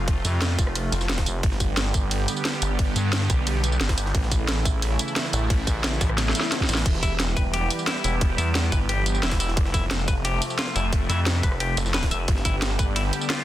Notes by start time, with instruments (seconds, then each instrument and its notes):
Already playing: detuned saw bass F1, analog synth pad C3 F3 A3 F4
0.08 kick, closed hi-hat, ride
0.25 fm bass F2, closed hi-hat, ride, tambourine
0.42 snare, closed hi-hat, ride
0.50 snare
0.58 fm bass F1, kick, closed hi-hat, ride, tambourine
0.67 cross-stick
0.75 cross-stick, closed hi-hat, ride, tambourine
0.92 detuned saw bass F1, closed hi-hat, ride, tambourine
1.01 snare, tambourine
1.09 snare, closed hi-hat, ride
1.18 kick, snare, ride
1.26 fm bass F1, closed hi-hat, ride, tambourine
1.43 detuned saw bass G1, analog synth pad D3 G3 B3 G4, kick, closed hi-hat, ride
1.52 snare
1.60 kick, closed hi-hat, ride, tambourine
1.77 snare, closed hi-hat, ride
1.94 kick, closed hi-hat, ride, tambourine
2.11 closed hi-hat, ride, tambourine
2.28 closed hi-hat, ride, tambourine
2.37 tambourine
2.45 snare, closed hi-hat, ride
2.53 cross-stick, snare
2.62 detuned saw bass G1, closed hi-hat, ride, tambourine
2.79 kick, closed hi-hat, ride
2.96 fm bass G2, closed hi-hat, ride, tambourine
3.13 snare, closed hi-hat, ride
3.21 snare
3.30 detuned saw bass B1, kick, closed hi-hat, ride, tambourine
3.47 cross-stick, closed hi-hat, ride, tambourine
3.64 closed hi-hat, tambourine
3.72 tambourine
3.81 detuned saw bass G1, snare, closed hi-hat, ride
3.89 kick, snare, ride
3.98 closed hi-hat, ride, tambourine
4.06 snare
4.14 detuned saw bass A1, analog synth pad C#3 E3 A3 E4, kick, closed hi-hat, ride
4.23 snare
4.32 kick, closed hi-hat, ride, tambourine
4.48 snare, closed hi-hat, ride
4.65 kick, closed hi-hat, ride, tambourine
4.82 closed hi-hat, ride, tambourine
4.99 closed hi-hat, ride, tambourine
5.08 tambourine
5.16 snare, closed hi-hat, ride
5.25 cross-stick, snare
5.33 detuned saw bass A1, closed hi-hat, ride, tambourine
5.50 kick, closed hi-hat, ride
5.67 fm bass A1, kick, closed hi-hat, ride, tambourine
5.84 snare, closed hi-hat, ride
5.93 snare
6.01 detuned saw bass A1, kick, snare, closed hi-hat, ride, tambourine
6.09 cross-stick
6.18 snare, closed hi-hat, ride, tambourine, swell
6.29 snare
6.35 closed hi-hat, ride, tambourine
6.41 snare, tambourine
6.52 snare, closed hi-hat, ride
6.60 kick, snare
6.63 snare
6.69 detuned saw bass A1, snare, closed hi-hat, ride, tambourine
6.75 snare
6.77 snare, ride
6.86 detuned saw bass E1, analog synth pad G3 B3 G4, kick, closed hi-hat, ride, crash
6.94 snare
7.03 clean electric guitar E4, kick, closed hi-hat, ride, tambourine
7.20 snare, closed hi-hat, ride
7.37 clean electric guitar B4, kick, closed hi-hat, ride, tambourine
7.53 clean electric guitar G4, closed hi-hat, ride, tambourine
7.70 closed hi-hat, ride, tambourine
7.79 tambourine
7.87 clean electric guitar E4, snare, closed hi-hat, ride
7.96 cross-stick, snare
8.04 detuned saw bass E1, clean electric guitar E4, closed hi-hat, ride, tambourine
8.21 kick, closed hi-hat, ride
8.38 fm bass E2, clean electric guitar E4, closed hi-hat, ride, tambourine
8.55 snare, closed hi-hat, ride
8.64 snare
8.72 detuned saw bass G1, clean electric guitar B4, kick, closed hi-hat, ride, tambourine
8.89 clean electric guitar G4, cross-stick, closed hi-hat, ride, tambourine
9.06 closed hi-hat, tambourine
9.15 tambourine
9.23 detuned saw bass E1, clean electric guitar E4, snare, closed hi-hat, ride
9.31 kick, snare, ride
9.40 clean electric guitar E4, closed hi-hat, ride, tambourine
9.48 snare
9.57 detuned saw bass F1, analog synth pad C3 F3 A3, kick, closed hi-hat, ride
9.65 snare
9.74 clean electric guitar E4, kick, closed hi-hat, ride, tambourine
9.91 snare, closed hi-hat, ride
10.08 clean electric guitar B4, kick, closed hi-hat, ride, tambourine
10.25 clean electric guitar G4, closed hi-hat, ride, tambourine
10.42 closed hi-hat, ride, tambourine
10.50 tambourine
10.59 clean electric guitar F4, snare, closed hi-hat, ride
10.67 cross-stick, snare
10.76 detuned saw bass F1, clean electric guitar E4, closed hi-hat, ride, tambourine
10.93 kick, closed hi-hat, ride
11.09 fm bass F2, clean electric guitar E4, closed hi-hat, ride, tambourine
11.26 snare, closed hi-hat, ride
11.35 snare
11.43 fm bass F1, clean electric guitar B4, kick, closed hi-hat, ride, tambourine
11.52 cross-stick
11.60 clean electric guitar G4, cross-stick, closed hi-hat, ride, tambourine
11.77 detuned saw bass F1, closed hi-hat, ride, tambourine
11.86 snare, tambourine
11.94 clean electric guitar B4, snare, closed hi-hat, ride
12.03 kick, snare, ride
12.11 fm bass F1, clean electric guitar E5, closed hi-hat, ride, tambourine
12.28 detuned saw bass G1, analog synth pad D3 G3 B3 G4, kick, closed hi-hat, ride
12.37 snare
12.45 clean electric guitar E4, kick, closed hi-hat, ride, tambourine
12.62 snare, closed hi-hat, ride
12.79 clean electric guitar B4, kick, closed hi-hat, ride, tambourine
12.96 clean electric guitar E4, closed hi-hat, ride, tambourine
13.13 closed hi-hat, ride, tambourine
13.21 tambourine
13.30 clean electric guitar F4, snare, closed hi-hat, ride
13.38 cross-stick, snare